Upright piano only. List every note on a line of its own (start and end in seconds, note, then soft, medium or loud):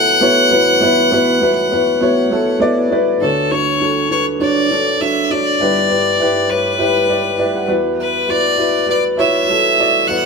0.00 0.48 E2 medium
0.00 0.48 E3 medium
0.00 0.21 B3 medium
0.00 0.21 E4 medium
0.00 0.22 F#4 medium
0.00 2.32 A4 medium
0.00 0.53 B4 loud
0.00 0.23 C#5 loud
0.21 0.44 B3 loud
0.21 0.44 E4 loud
0.21 0.45 F#4 medium
0.21 0.45 C#5 loud
0.51 2.87 E2 medium
0.51 2.87 E3 medium
0.51 0.74 B3 medium
0.51 0.74 E4 medium
0.51 0.75 F#4 medium
0.51 0.75 B4 loud
0.81 1.04 B3 loud
0.81 1.04 E4 loud
0.81 1.05 F#4 loud
0.81 1.05 B4 loud
1.11 1.34 B3 loud
1.11 1.35 E4 loud
1.11 1.35 F#4 loud
1.11 1.35 B4 loud
1.41 1.64 B3 medium
1.41 1.65 E4 medium
1.41 1.65 F#4 medium
1.41 1.65 B4 loud
1.72 1.94 B3 medium
1.72 1.95 E4 medium
1.72 1.95 F#4 medium
1.72 1.95 B4 loud
2.01 2.24 B3 loud
2.01 2.24 E4 medium
2.01 2.24 F#4 medium
2.01 2.25 C#5 loud
2.30 2.54 B3 medium
2.30 2.54 E4 medium
2.30 2.54 F#4 medium
2.30 2.55 A4 medium
2.60 2.83 B3 loud
2.60 2.84 E4 medium
2.60 2.84 F#4 medium
2.60 2.84 D5 loud
2.90 3.14 B3 medium
2.90 3.14 E4 medium
2.90 3.14 F#4 medium
2.90 3.15 B4 loud
3.21 5.57 D2 soft
3.21 5.57 D3 medium
3.21 3.44 D4 medium
3.21 3.44 F#4 medium
3.21 3.45 C#5 medium
3.50 3.73 D4 medium
3.50 3.74 F#4 medium
3.50 3.74 C#5 medium
3.80 4.03 D4 medium
3.80 4.04 F#4 medium
3.80 4.04 A4 medium
4.09 4.33 D4 medium
4.09 4.33 F#4 medium
4.09 4.34 B4 medium
4.40 4.63 D4 medium
4.40 4.64 F#4 medium
4.40 4.64 C#5 medium
4.70 4.93 D4 medium
4.70 4.94 F#4 medium
4.70 4.94 A4 medium
5.00 5.23 D4 medium
5.00 5.24 F#4 medium
5.00 5.24 C#5 medium
5.30 5.53 D4 medium
5.30 5.53 F#4 medium
5.30 5.54 C#5 medium
5.60 7.66 G1 medium
5.60 7.66 G2 medium
5.60 5.83 E4 medium
5.60 5.83 G4 medium
5.60 5.84 B4 medium
5.89 6.12 E4 medium
5.89 6.13 G4 medium
5.89 6.13 B4 medium
6.20 6.43 E4 medium
6.20 6.43 G4 medium
6.20 6.44 B4 medium
6.49 6.72 E4 medium
6.49 6.73 G4 medium
6.49 6.73 C#5 medium
6.79 7.02 E4 medium
6.79 7.03 G4 medium
6.79 7.03 B4 loud
7.08 7.32 E4 medium
7.08 7.32 G4 medium
7.08 7.33 D5 medium
7.38 7.62 E4 medium
7.38 7.62 G4 medium
7.38 7.63 B4 medium
7.38 7.55 D5 medium
7.56 7.96 F#5 medium
7.67 10.04 E2 medium
7.67 10.04 E3 medium
7.67 8.18 E4 medium
7.67 8.18 F#4 medium
7.67 8.19 B4 loud
8.27 8.51 E4 medium
8.27 8.51 F#4 medium
8.27 8.52 B4 medium
8.57 8.81 E4 medium
8.57 8.82 F#4 medium
8.57 8.82 B4 medium
8.87 9.11 E4 medium
8.87 9.12 F#4 medium
8.87 9.12 B4 medium
9.17 9.41 E4 loud
9.17 9.42 F#4 medium
9.17 9.42 C#5 loud
9.48 9.72 E4 medium
9.48 9.72 F#4 medium
9.48 9.73 A4 medium
9.78 10.02 E4 medium
9.78 10.02 F#4 medium
9.78 10.03 D5 medium
10.08 10.26 E2 medium
10.08 10.26 E3 medium
10.08 10.26 E4 medium
10.08 10.26 F#4 medium
10.08 10.26 B4 medium